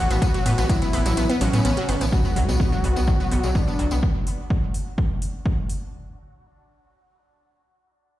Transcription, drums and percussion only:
0.11 closed hi-hat soft
0.11 tambourine medium
0.22 kick loud
0.22 closed hi-hat medium
0.22 tambourine medium
0.34 closed hi-hat soft
0.34 tambourine soft
0.46 open hi-hat loud
0.46 ride medium
0.58 closed hi-hat soft
0.58 tambourine medium
0.69 kick loud
0.69 closed hi-hat medium
0.69 tambourine medium
0.82 closed hi-hat soft
0.82 tambourine soft
0.93 open hi-hat medium
0.93 ride medium
1.06 closed hi-hat soft
1.06 tambourine medium
1.17 closed hi-hat medium
1.17 tambourine medium
1.30 closed hi-hat soft
1.30 tambourine soft
1.41 open hi-hat loud
1.41 ride medium
1.53 closed hi-hat soft
1.53 tambourine medium
1.65 closed hi-hat medium
1.65 tambourine medium
1.77 closed hi-hat soft
1.77 tambourine soft
1.89 open hi-hat medium
1.89 ride medium
2.01 closed hi-hat soft
2.01 tambourine medium
2.12 kick loud
2.12 tambourine medium
2.25 tambourine soft
2.36 open hi-hat loud
2.49 tambourine medium
2.60 kick loud
2.73 tambourine soft
2.84 open hi-hat medium
2.96 tambourine medium
3.07 kick loud
3.07 tambourine medium
3.20 tambourine soft
3.31 open hi-hat loud
3.43 tambourine medium
3.55 kick loud
3.55 tambourine medium
3.68 tambourine soft
3.79 open hi-hat medium
3.91 tambourine medium
4.03 kick loud
4.27 open hi-hat loud
4.50 kick loud
4.74 open hi-hat medium
4.98 kick loud
5.22 open hi-hat loud
5.46 kick loud
5.69 open hi-hat medium

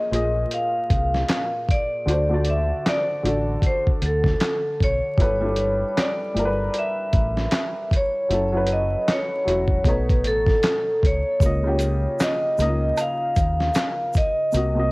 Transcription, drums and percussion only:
0.13 closed hi-hat medium
0.51 closed hi-hat medium
0.90 kick medium
0.90 closed hi-hat medium
1.14 snare soft
1.28 snare loud
1.28 clap medium
1.28 closed hi-hat medium
1.69 kick medium
1.69 closed hi-hat medium
2.08 closed hi-hat medium
2.45 closed hi-hat medium
2.86 snare loud
2.86 clap medium
2.86 closed hi-hat medium
3.25 closed hi-hat medium
3.62 kick medium
3.62 closed hi-hat medium
3.87 kick medium
4.02 closed hi-hat medium
4.24 kick medium
4.24 snare soft
4.40 snare loud
4.40 clap medium
4.40 closed hi-hat medium
4.80 kick medium
4.80 closed hi-hat medium
5.18 kick loud
5.18 closed hi-hat medium
5.56 closed hi-hat medium
5.98 snare loud
5.98 clap medium
5.98 closed hi-hat medium
6.37 closed hi-hat medium
6.74 closed hi-hat medium
7.13 kick medium
7.13 closed hi-hat medium
7.37 snare soft
7.51 snare loud
7.51 clap medium
7.51 closed hi-hat medium
7.91 kick medium
7.91 closed hi-hat medium
8.31 closed hi-hat medium
8.67 closed hi-hat medium
9.08 snare loud
9.08 clap medium
9.08 closed hi-hat medium
9.48 closed hi-hat medium
9.68 kick medium
9.85 kick medium
9.85 closed hi-hat medium
10.09 kick medium
10.09 closed hi-hat soft
10.24 closed hi-hat medium
10.46 kick medium
10.46 snare soft
10.63 snare loud
10.63 clap medium
10.63 closed hi-hat medium
11.03 kick medium
11.03 closed hi-hat medium
11.40 kick loud
11.40 closed hi-hat medium
11.40 shaker medium
11.79 closed hi-hat medium
11.79 shaker medium
12.19 snare loud
12.19 clap medium
12.19 closed hi-hat medium
12.19 shaker medium
12.58 closed hi-hat medium
12.58 shaker soft
12.97 closed hi-hat medium
12.97 high woodblock medium
12.97 shaker medium
13.36 kick medium
13.36 closed hi-hat medium
13.36 shaker soft
13.60 snare soft
13.74 snare loud
13.74 clap medium
13.74 closed hi-hat medium
13.74 shaker medium
14.13 kick medium
14.13 closed hi-hat medium
14.13 shaker soft
14.52 closed hi-hat medium
14.52 shaker medium

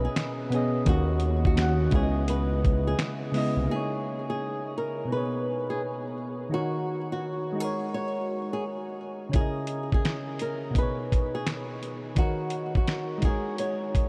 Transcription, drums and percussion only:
0.16 finger snap medium
0.16 snare loud
0.16 closed hi-hat medium
0.52 closed hi-hat medium
0.86 kick loud
0.86 closed hi-hat medium
1.20 closed hi-hat medium
1.45 kick medium
1.57 finger snap medium
1.57 snare loud
1.57 closed hi-hat medium
1.91 kick loud
1.91 closed hi-hat medium
2.28 closed hi-hat medium
2.65 kick medium
2.65 closed hi-hat medium
2.99 finger snap medium
2.99 snare loud
2.99 closed hi-hat medium
3.34 open hi-hat soft
9.33 kick loud
9.33 closed hi-hat medium
9.67 closed hi-hat medium
9.92 kick medium
10.05 finger snap medium
10.05 snare loud
10.05 closed hi-hat medium
10.39 closed hi-hat medium
10.75 kick medium
10.75 closed hi-hat medium
11.12 kick medium
11.12 closed hi-hat medium
11.47 finger snap medium
11.47 snare medium
11.47 closed hi-hat medium
11.83 closed hi-hat medium
12.16 kick loud
12.16 closed hi-hat medium
12.50 closed hi-hat medium
12.75 kick medium
12.87 finger snap medium
12.87 snare loud
12.87 closed hi-hat medium
13.22 kick medium
13.22 closed hi-hat medium
13.58 closed hi-hat medium
13.95 kick medium
13.95 closed hi-hat medium

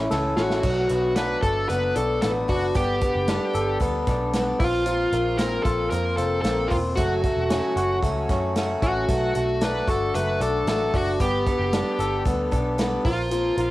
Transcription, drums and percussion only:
0.11 snare medium
0.37 snare medium
0.50 snare medium
0.63 kick medium
0.63 crash medium
0.89 closed hi-hat medium
1.16 snare loud
1.16 closed hi-hat medium
1.43 kick medium
1.43 closed hi-hat medium
1.69 closed hi-hat medium
1.96 closed hi-hat medium
2.22 snare medium
2.22 closed hi-hat medium
2.49 kick medium
2.49 open hi-hat medium
2.75 kick medium
2.75 closed hi-hat medium
3.01 kick medium
3.01 closed hi-hat medium
3.28 snare loud
3.28 closed hi-hat medium
3.55 closed hi-hat medium
3.81 kick medium
3.81 closed hi-hat medium
4.07 kick medium
4.07 snare soft
4.07 closed hi-hat medium
4.33 snare medium
4.33 closed hi-hat medium
4.60 kick loud
4.60 open hi-hat medium
4.86 closed hi-hat medium
5.12 closed hi-hat medium
5.39 snare loud
5.39 closed hi-hat medium
5.65 kick medium
5.65 closed hi-hat medium
5.92 closed hi-hat medium
6.18 closed hi-hat medium
6.44 snare loud
6.44 closed hi-hat medium
6.71 kick medium
6.71 open hi-hat medium
6.97 kick medium
6.97 closed hi-hat medium
7.24 kick medium
7.24 closed hi-hat medium
7.50 snare loud
7.50 closed hi-hat medium
7.77 closed hi-hat medium
8.03 kick medium
8.03 closed hi-hat medium
8.29 kick medium
8.29 snare soft
8.29 closed hi-hat medium
8.56 snare medium
8.56 closed hi-hat medium
8.82 kick medium
8.82 closed hi-hat medium
9.08 kick medium
9.08 closed hi-hat medium
9.35 closed hi-hat medium
9.61 snare loud
9.61 closed hi-hat medium
9.88 kick medium
9.88 closed hi-hat medium
10.15 closed hi-hat medium
10.41 closed hi-hat medium
10.67 snare medium
10.67 closed hi-hat medium
10.94 kick medium
10.94 open hi-hat medium
11.20 kick medium
11.20 closed hi-hat medium
11.47 kick medium
11.47 closed hi-hat medium
11.73 snare loud
11.73 closed hi-hat medium
12.00 closed hi-hat medium
12.26 kick medium
12.26 closed hi-hat medium
12.52 kick medium
12.52 closed hi-hat medium
12.79 snare medium
12.79 closed hi-hat medium
13.05 kick medium
13.05 open hi-hat medium
13.31 closed hi-hat medium
13.57 closed hi-hat medium

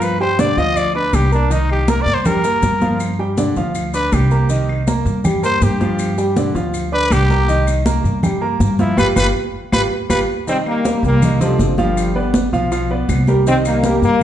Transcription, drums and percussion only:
0.01 high conga soft
0.01 claves medium
0.01 maracas medium
0.20 high conga soft
0.39 high conga loud
0.39 maracas medium
0.58 high conga soft
0.58 maracas soft
0.76 high conga soft
0.76 claves medium
0.76 maracas medium
0.95 high conga soft
1.13 high conga medium
1.13 claves medium
1.13 maracas medium
1.32 maracas soft
1.51 high conga soft
1.51 maracas medium
1.69 high conga soft
1.69 claves medium
1.88 high conga medium
1.88 maracas medium
2.07 high conga soft
2.07 maracas soft
2.25 high conga soft
2.25 low conga loud
2.25 claves medium
2.25 maracas medium
2.44 high conga soft
2.44 maracas medium
2.63 high conga medium
2.63 maracas medium
2.81 high conga medium
2.81 maracas soft
3.00 high conga soft
3.00 claves medium
3.00 maracas medium
3.19 high conga soft
3.37 high conga medium
3.37 maracas medium
3.56 high conga soft
3.56 maracas soft
3.75 high conga soft
3.75 claves medium
3.75 maracas medium
3.94 high conga soft
3.94 maracas medium
4.12 high conga medium
4.12 claves medium
4.12 maracas medium
4.31 maracas soft
4.49 high conga soft
4.49 maracas medium
4.69 high conga soft
4.69 claves medium
4.87 high conga loud
4.87 maracas medium
5.06 high conga soft
5.06 maracas soft
5.25 high conga soft
5.25 low conga loud
5.25 claves medium
5.25 maracas medium
5.44 high conga soft
5.44 maracas medium
5.62 high conga medium
5.62 maracas medium
5.81 high conga medium
5.81 maracas soft
5.99 high conga soft
5.99 claves medium
5.99 maracas medium
6.18 high conga soft
6.18 maracas medium
6.37 high conga loud
6.37 maracas medium
6.55 high conga soft
6.55 maracas soft
6.74 high conga soft
6.74 claves medium
6.74 maracas medium
6.93 high conga soft
7.11 high conga medium
7.11 claves medium
7.11 maracas medium
7.30 high conga medium
7.30 maracas soft
7.49 high conga soft
7.49 maracas medium
7.67 high conga soft
7.67 claves medium
7.67 maracas medium
7.86 high conga loud
7.86 maracas medium
8.04 high conga soft
8.04 maracas soft
8.23 high conga soft
8.23 low conga medium
8.23 claves medium
8.23 maracas medium
8.42 high conga soft
8.60 high conga medium
8.60 maracas medium
8.79 high conga medium
8.79 maracas soft
8.98 high conga loud
8.98 claves loud
8.98 maracas loud
9.16 high conga loud
9.16 claves loud
9.16 maracas loud
9.72 high conga loud
9.72 claves loud
9.72 maracas loud
10.10 high conga loud
10.10 claves loud
10.10 maracas loud
10.48 high conga soft
10.48 maracas medium
10.66 high conga soft
10.66 claves medium
10.85 high conga loud
10.85 maracas medium
11.04 high conga soft
11.04 maracas soft
11.22 high conga soft
11.22 low conga medium
11.22 claves medium
11.22 maracas medium
11.41 high conga soft
11.41 low conga medium
11.41 maracas medium
11.59 high conga medium
11.59 maracas medium
11.78 high conga medium
11.78 maracas soft
11.97 high conga soft
11.97 claves medium
11.97 maracas medium
12.16 high conga soft
12.34 high conga loud
12.34 maracas medium
12.53 high conga soft
12.53 maracas soft
12.71 high conga soft
12.71 claves medium
12.71 maracas medium
12.90 high conga soft
13.09 high conga medium
13.09 claves medium
13.09 maracas medium
13.27 high conga medium
13.27 maracas soft
13.46 high conga soft
13.46 maracas medium
13.65 high conga soft
13.65 claves medium
13.65 maracas medium
13.84 high conga loud
13.84 maracas medium
14.02 high conga soft
14.02 maracas soft

